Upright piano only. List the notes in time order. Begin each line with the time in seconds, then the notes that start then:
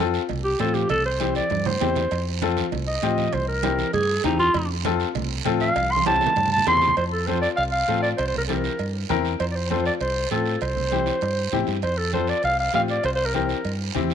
0.00 C4 F4 A4
0.59 C4 F4 C5
1.20 C4 E4 G4
1.80 C4 E4 G4
2.42 C4 F4 A4
3.03 C4 F4 G4
3.63 C4 E4 G4
4.24 C4 E4 G4
4.84 C4 F4 A4
5.45 C4 F4 A4
6.06 C4 E4 G4
6.67 C4 E4 G4
7.27 C4 F4 A4
7.88 C4 F4 A4
8.49 C4 E4 G4
9.09 C4 E4 A#4
9.70 C4 F4 A4
10.31 C4 F4 A4
10.92 C4 E4 G4
11.52 C4 E4 G4
12.13 C4 F4 A4
12.74 C4 F4 G4
13.34 C4 E4 G4
13.95 C4 E4 G4